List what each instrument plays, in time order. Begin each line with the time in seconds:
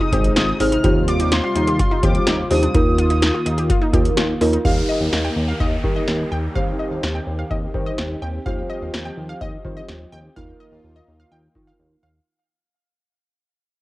Already playing: analog synth pad C3 G#3 D#4, analog polysynth D#6
0.01 synth arpeggio sound D#4
0.12 analog synth bass G#1, synth keys D#4 G#4 C5, synth arpeggio sound G4, kick, closed hi-hat
0.24 closed hi-hat
0.36 analog synth bass G#1, synth arpeggio sound F4, analog polysynth D#6, snare, closed hi-hat
0.60 analog synth bass G#1, synth arpeggio sound D#4, synth keys D#4 G#4 C5, analog polysynth F6, open hi-hat
0.72 synth arpeggio sound D#4, closed hi-hat
0.84 analog synth bass D#2, analog synth pad G3 F4, synth arpeggio sound D#4, synth keys F4 G4 C5, kick, closed hi-hat
1.08 synth arpeggio sound F4, analog polysynth D6, closed hi-hat
1.20 synth arpeggio sound D#4, closed hi-hat
1.32 synth arpeggio sound D#4, analog polysynth C6, snare, closed hi-hat
1.44 synth arpeggio sound F4
1.55 analog synth bass D#2, synth arpeggio sound D#4, analog polysynth C6, closed hi-hat
1.67 synth arpeggio sound G4, closed hi-hat
1.79 synth arpeggio sound F4, kick, closed hi-hat
1.91 synth arpeggio sound D#4
2.03 analog synth bass D#2, synth keys F4 G4 C5, synth arpeggio sound G4, analog polysynth D6, kick, closed hi-hat
2.15 closed hi-hat
2.27 analog synth bass D#2, synth arpeggio sound D#4, snare, closed hi-hat
2.51 analog synth bass D#2, synth arpeggio sound D4, synth keys F4 G4 C5, analog polysynth D#6, open hi-hat
2.63 synth arpeggio sound D4, closed hi-hat
2.75 analog synth bass D#2, analog synth pad D#3 A#3 F4, synth arpeggio sound D#4, synth keys D#4 F4 A#4, kick, closed hi-hat
2.98 synth arpeggio sound F4, closed hi-hat
3.10 synth arpeggio sound D#4, closed hi-hat
3.22 synth arpeggio sound D#4, snare, closed hi-hat
3.34 synth arpeggio sound F4
3.46 analog synth bass D#2, synth arpeggio sound D#4, closed hi-hat
3.58 synth arpeggio sound G4, closed hi-hat
3.70 synth arpeggio sound F4, kick, closed hi-hat
3.82 synth arpeggio sound D#4
3.93 analog synth bass D#2, synth keys D#4 F4 A#4, synth arpeggio sound G4, kick, closed hi-hat
4.05 closed hi-hat
4.17 analog synth bass D#2, synth arpeggio sound F4, snare, closed hi-hat
4.41 analog synth bass D#2, synth arpeggio sound D#4, synth keys D#4 F4 A#4, open hi-hat
4.53 synth arpeggio sound D#4, closed hi-hat
4.65 analog synth bass D#2, analog synth pad D#3 A#3 G4, synth keys D#4 G4 A#4, synth pluck F5, kick, downlifter
4.89 synth pluck D#5
5.01 analog synth bass D#2
5.13 analog synth bass D#2, snare
5.25 synth pluck G5
5.36 analog synth bass D#2
5.48 synth pluck F5
5.60 analog synth bass D#2, synth pluck D#5, kick
5.84 analog synth bass D#3, synth keys D#4 G4 A#4, kick
5.96 synth pluck D#5
6.08 analog synth bass D#2, snare
6.32 analog synth bass D#2, synth pluck G5
6.55 analog synth bass D#2, analog synth pad D#3 C4, synth keys D#4 G4 C5, synth pluck F5, kick
6.79 synth pluck D#5
6.91 analog synth bass D#2
7.03 analog synth bass D#2, snare
7.15 synth pluck G5
7.27 analog synth bass D#2
7.39 synth pluck F5
7.51 analog synth bass D#2, synth pluck D#5, kick
7.74 analog synth bass D#3, synth keys D#4 G4 C5, kick
7.86 synth pluck D#5
7.98 analog synth bass D#2, snare
8.22 analog synth bass D#2, synth pluck G5
8.46 analog synth bass D#2, analog synth pad F3, synth keys F4 G4 C5, synth pluck F5, kick
8.70 synth pluck D#5
8.82 analog synth bass D#2
8.94 analog synth bass D#2, snare
9.05 synth pluck G5
9.17 analog synth bass D#2
9.29 synth pluck F5
9.41 analog synth bass D#2, synth pluck D#5, kick
9.65 analog synth bass D#3, synth keys F4 G4 C5, kick
9.77 synth pluck D#5
9.89 analog synth bass D#2, snare
10.12 analog synth bass D#2, synth pluck G5
10.36 analog synth bass D#2, analog synth pad D#3 A#3 F4, synth keys D#4 F4 A#4, synth pluck F5, kick
10.60 synth pluck D#5
10.72 analog synth bass D#2
10.84 analog synth bass D#2
10.96 synth pluck D#5
11.08 analog synth bass D#2
11.20 synth pluck F5
11.32 analog synth bass D#2, synth pluck G5
11.55 analog synth bass D#3, synth keys D#4 F4 A#4, kick
11.67 synth pluck F5
11.79 analog synth bass D#2
12.03 analog synth bass D#2, synth pluck F5